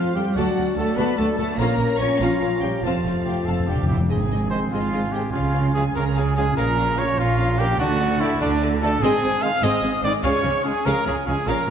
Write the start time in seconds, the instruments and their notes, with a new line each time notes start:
Already playing: cello section F3, trombone section F3 C4, french horn section F4, trumpet F4, clarinet C5, violin section F5, oboe F5
0.15 double bass section F2, cello section G3, viola section A3 F4, trumpet G4, french horn section G4, violin section A4 C5 G5
0.35 double bass section D2, cello section F#3, trombone section F#3 D4, viola section A3 F#4, trumpet F#4, french horn section F#4, clarinet D5, violin section D5 F#5 A5, oboe A5
0.56 double bass section D2, viola section A3 F#4, violin section F#4 D5
0.76 double bass section D2, cello section A3, viola section A3 F#4, trumpet A4, violin section A4 F#5 A5
0.80 french horn section A4
0.96 double bass section D2, viola section A3 F#4, cello section B3, trumpet B4, french horn section B4, violin section D5 A5 B5
1.17 double bass section D2, cello section A3, viola section A3 F#4, violin section F#4 D5 A5, trumpet A4, french horn section A4
1.37 double bass section D2, cello section A3, viola section A3 F#4, trumpet A4, french horn section A4, violin section A4 F#5 A5
1.57 double bass section A#1, trombone section F3 C#4, cello section A#3, viola section C#4 F4, trumpet A#4, french horn section A#4, clarinet C#5, violin section F5 A#5, oboe A#5
1.79 double bass section A#1, viola section C#4 F4, violin section A#4 C#5
1.98 double bass section A#1, cello section C#4, viola section C#4 F4, trumpet C#5, french horn section C#5, violin section C#5 F5 C#6
2.19 double bass section A#1, cello section F3, viola section C#4 F4, trumpet F4, french horn section F4, violin section F5 A#5
2.41 double bass section A#1, viola section C#4 F4, violin section A#4 C#5
2.61 double bass section A#1, cello section G3, viola section C#4 F4, trumpet G4, french horn section G4, violin section C#5 F5 G5
2.83 double bass section F1, timpani F2, cello section F3, trombone section A3, viola section C4 F4, french horn section F4, trumpet F4, clarinet C5, violin section F5 A5, oboe A5
2.90 timpani F2
2.98 timpani F2
3.05 double bass section F1, viola section C4 F4, violin section A4 C5
3.13 timpani F2
3.21 timpani F2, trumpet G4, flute section G5
3.26 double bass section F1, timpani F2, viola section C4 F4, violin section C5 F5 G5
3.37 timpani F2
3.44 double bass section F1, timpani F2, trumpet A4, flute section A5, violin section A5
3.48 timpani F2, viola section C4, violin section F5
3.60 timpani F2
3.67 double bass section F1, timpani F2, viola section D4, trumpet G4, violin section A4 C5 G5, flute section G5
3.75 timpani F2
3.83 timpani F2
3.88 double bass section F1, timpani F2, viola section E4, trumpet G4, violin section F5, flute section G5
3.92 violin section C5 G5
3.98 timpani F2
4.09 double bass section G#1, cello section G#2, clarinet C4, viola section C4 G#4, trumpet G#4, violin section D#5 G#5, flute section G#5, oboe G#5
4.31 viola section C4 G#4, violin section D#5
4.50 trombone section D#3 G#3, french horn section C4 G#4, viola section C4 G#4, trumpet C5, violin section D#5 C6, flute section C6
4.71 double bass section G#1, cello section G#2, viola section C4 G#4, trumpet F4, violin section D#5 F5, flute section F5
4.93 viola section C4 G#4, violin section D#5
5.12 trombone section D#3 G#3, viola section C4 G#4, french horn section C4 G#4, trumpet G4, violin section D#5 G5, flute section G5
5.32 double bass section C#2, cello section C#3, viola section C#4 G#4, clarinet C#4, trumpet F4, flute section F5, violin section F5
5.37 violin section F5
5.54 viola section C#4 G#4, violin section F5
5.74 trombone section F3 G#3, viola section C#4 G#4, french horn section C#4 G#4, trumpet G#4, violin section F5 G#5, flute section G#5
5.95 double bass section C#2, cello section C#3, viola section C#4 G#4, trumpet A#4, violin section F5 A#5, flute section A#5
6.16 viola section C#4 G#4, trumpet G#4, violin section F5 G#5, flute section G#5
6.36 trombone section F3 G#3, viola section C#4 G#4, french horn section C#4 G#4, trumpet G#4, violin section F5 G#5, flute section G#5
6.56 double bass section A#1, cello section A#2, viola section C#4 A#4, trumpet A#4, violin section F5 A#5, oboe A#5, flute section A#5
6.77 viola section C#4 A#4, violin section F5
6.96 trombone section F3 A#3, trumpet C#5, violin section F5 C#6, flute section C#6
7.00 viola section C#4 A#4, french horn section C#4 F4
7.17 double bass section A#1, cello section A#2, viola section C#4 A#4, trumpet F4, flute section F5, violin section F5
7.39 viola section C#4 A#4, violin section F5
7.58 trombone section F3 A#3, french horn section C#4 F4, viola section C#4 A#4, trumpet G4, violin section F5 G5, flute section G5
7.79 double bass section D2, cello section D3, viola section D4 A4, clarinet D4, trumpet F#4, violin section D5 F#5, flute section F#5, oboe A5
8.00 viola section D4 A4, violin section D5
8.20 trombone section D3 A3, french horn section D4 F#4, viola section D4 A4, trumpet E4, violin section D5 E5, flute section E5
8.40 double bass section D2, cello section D3, trumpet D4, viola section D4 A4, flute section D5, violin section D5
8.61 viola section D4 A4, violin section D5
8.80 trombone section D3 A3, french horn section D4 F#4, viola section D4 A4, trumpet A4, violin section D5 A5, flute section A5
9.01 double bass section G#1, cello section G#2, clarinet C4, viola section C4 G#4, trumpet G#4, violin section D#5 G#5, flute section G#5, oboe G#5
9.22 double bass section G#1, cello section G#2, clarinet C4, viola section C4, violin section G#4, oboe G#5
9.40 trombone section D#3 G#3, french horn section C4 D#4, clarinet C4, trumpet F5, oboe G#5, flute section F6, violin section F6
9.62 double bass section G#1, cello section G#2, clarinet C4, viola section C4 G#4, violin section D#5 D#6, trumpet D#5, oboe G#5, flute section D#6
9.82 double bass section G#1, cello section G#2, viola section C4, clarinet C4, violin section G#4, oboe G#5
10.01 double bass section G#1, cello section G#2, trombone section D#3 G#3, clarinet C4, viola section C4 D#4, french horn section C4 D#4, violin section C5 D6, trumpet D5, oboe G#5, flute section D6
10.23 double bass section C#2, cello section C#3, viola section C#4 G#4, clarinet C#4, trumpet C#5, violin section F5 C#6, oboe F5, flute section C#6
10.42 double bass section C#2, cello section C#3, clarinet C#4, viola section C#4, violin section G#4, oboe F5
10.63 trombone section C#3 G#3, clarinet C#4, french horn section C#4 F4, trumpet G#4, oboe F5, flute section G#5, violin section G#5
10.85 double bass section C#2, cello section C#3, viola section C#4 G#4, clarinet C#4, trumpet A#4, oboe F5, violin section F5 A#5, flute section A#5
11.05 double bass section C#2, cello section C#3, clarinet C#4, viola section C#4, violin section G#4 G#5, trumpet G#4, oboe F5, flute section G#5
11.25 double bass section C#2, cello section C#3, trombone section C#3 G#3, french horn section C#4 F4, viola section C#4 F4, clarinet C#4, trumpet G#4, violin section C#5 G#5, oboe F5, flute section G#5
11.46 double bass section A#1, cello section A#2, viola section C#4 A#4, clarinet C#4, trumpet A#4, oboe F5, violin section F5, flute section A#5
11.50 violin section A#5